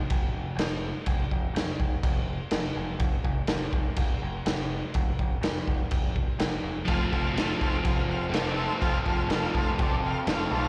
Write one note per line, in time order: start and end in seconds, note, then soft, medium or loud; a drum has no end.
0.10 0.28 F1 medium
0.10 kick loud
0.10 crash medium
0.33 0.51 F1 medium
0.55 0.92 F1 medium
0.55 crash medium
0.59 snare loud
1.06 1.24 F1 medium
1.06 kick loud
1.06 crash medium
1.31 1.49 F1 medium
1.31 kick medium
1.54 1.72 F1 medium
1.54 snare loud
1.54 crash medium
1.80 1.97 F1 medium
1.80 kick medium
2.03 2.39 F1 medium
2.03 kick loud
2.03 crash medium
2.51 2.69 F1 loud
2.51 snare loud
2.51 crash medium
2.76 2.94 F1 medium
2.99 3.17 F1 loud
2.99 kick loud
2.99 crash medium
3.24 3.42 F1 medium
3.24 kick medium
3.47 3.66 F1 loud
3.47 snare loud
3.47 crash medium
3.72 3.90 F1 medium
3.72 kick medium
3.96 4.15 F1 loud
3.96 kick loud
3.96 crash medium
4.22 4.39 F1 medium
4.46 4.81 F1 medium
4.46 snare loud
4.46 crash medium
4.94 5.12 F1 loud
4.94 kick loud
4.94 crash soft
5.19 5.37 F1 medium
5.19 kick medium
5.41 5.59 F1 medium
5.41 snare loud
5.41 crash medium
5.67 5.85 F1 medium
5.67 kick medium
5.91 6.27 F1 medium
5.91 kick loud
5.91 crash medium
6.16 kick medium
6.39 6.57 F1 medium
6.39 snare loud
6.39 crash medium
6.63 6.81 F1 medium
6.85 7.06 F1 medium
6.85 7.32 F3 medium
6.85 7.34 A3 loud
6.85 7.14 C4 medium
6.85 7.11 F4 loud
6.85 7.03 A4 loud
6.85 7.04 C5 medium
6.85 7.04 F5 loud
6.85 kick loud
6.85 crash medium
6.91 7.09 A4 loud
7.09 7.30 F1 medium
7.09 7.36 F4 medium
7.09 7.37 A4 medium
7.09 7.28 A4 medium
7.09 kick medium
7.14 7.34 C4 medium
7.14 7.29 C5 medium
7.14 7.29 F5 medium
7.33 7.53 F1 medium
7.33 8.78 F3 medium
7.33 8.29 A3 loud
7.33 7.61 C4 loud
7.33 7.59 F4 loud
7.37 7.56 A4 loud
7.37 7.53 A4 medium
7.37 7.53 C5 medium
7.37 7.54 F5 loud
7.37 snare loud
7.37 crash medium
7.56 8.32 F4 medium
7.56 8.34 A4 medium
7.61 7.79 F1 medium
7.61 8.32 C4 medium
7.61 7.77 A4 loud
7.61 7.77 C5 loud
7.61 7.77 F5 loud
7.61 kick medium
7.84 8.02 F1 loud
7.84 8.01 A4 medium
7.84 8.01 C5 medium
7.84 8.02 F5 medium
7.84 kick loud
7.84 crash medium
8.08 8.26 F1 medium
8.08 8.25 A4 medium
8.08 8.26 C5 medium
8.08 8.26 F5 medium
8.29 8.67 F1 medium
8.29 8.78 A3 medium
8.29 8.58 C4 medium
8.33 8.55 F4 medium
8.33 8.50 A4 medium
8.33 8.53 A4 medium
8.33 8.50 C5 medium
8.33 8.51 D5 medium
8.33 snare loud
8.33 crash medium
8.54 8.81 F4 medium
8.54 8.81 A4 medium
8.54 8.73 A4 loud
8.54 8.73 C5 loud
8.54 8.73 E5 loud
8.58 8.80 C4 medium
8.78 8.99 F1 medium
8.78 9.28 F3 medium
8.78 9.29 A3 medium
8.78 9.08 C4 loud
8.78 9.05 F4 loud
8.78 8.97 A4 loud
8.78 8.97 C5 medium
8.78 8.97 F5 loud
8.78 kick loud
8.82 9.02 A4 loud
8.82 crash soft
9.03 9.24 F1 medium
9.03 9.31 F4 medium
9.03 9.32 A4 medium
9.03 kick medium
9.08 9.31 C4 medium
9.08 9.23 A4 medium
9.08 9.23 C5 medium
9.08 9.23 F5 medium
9.28 9.46 F1 loud
9.28 9.79 F3 medium
9.28 9.79 A3 loud
9.28 9.57 C4 loud
9.28 snare loud
9.28 crash medium
9.32 9.55 F4 loud
9.32 9.47 A4 medium
9.32 9.52 A4 loud
9.32 9.48 C5 medium
9.32 9.47 F5 medium
9.53 9.72 F1 medium
9.53 10.28 C4 medium
9.53 10.27 F4 medium
9.53 10.30 A4 medium
9.53 9.71 A4 loud
9.53 9.71 C5 loud
9.53 kick medium
9.58 9.72 F5 loud
9.79 10.14 F1 medium
9.79 9.96 A4 medium
9.79 9.96 C5 medium
9.79 9.96 D5 medium
9.79 kick loud
9.79 crash medium
10.04 10.20 A4 medium
10.04 10.19 C5 medium
10.04 10.20 F5 medium
10.26 10.45 F1 medium
10.26 10.68 A3 medium
10.26 10.54 C4 medium
10.26 10.50 F4 medium
10.26 10.44 A4 medium
10.26 10.44 C5 medium
10.26 snare loud
10.26 crash medium
10.30 10.48 A4 medium
10.30 10.45 F5 loud
10.49 10.68 B1 medium
10.49 10.68 F4 medium
10.49 10.68 A4 medium
10.54 10.68 C4 medium
10.54 10.68 A4 loud
10.54 10.68 C5 loud
10.54 10.68 F5 loud